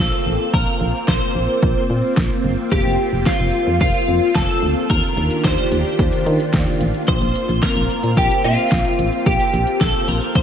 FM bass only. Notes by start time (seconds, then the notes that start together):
0.00 A#1
0.26 A1
0.54 A#1
0.81 A#1
1.08 A#1
1.35 A#1
1.63 A#1
1.90 A#2
2.17 A#1
2.44 G1
2.72 F1
2.85 F1
3.13 F1
3.40 F1
3.67 F2
3.81 F1
4.08 F2
4.35 F1
4.63 D2
4.90 D#2
5.17 D#2
5.45 D#2
5.72 D#2
5.99 D#2
6.26 D#3
6.54 D#2
6.81 A1
7.08 A#1
7.22 A#1
7.49 A#1
7.76 A#1
8.03 A#2
8.17 A#1
8.44 A#2
8.72 A#1
8.99 A1
9.26 A#1
9.54 A#1
9.81 A#1
10.08 A#1
10.35 A#1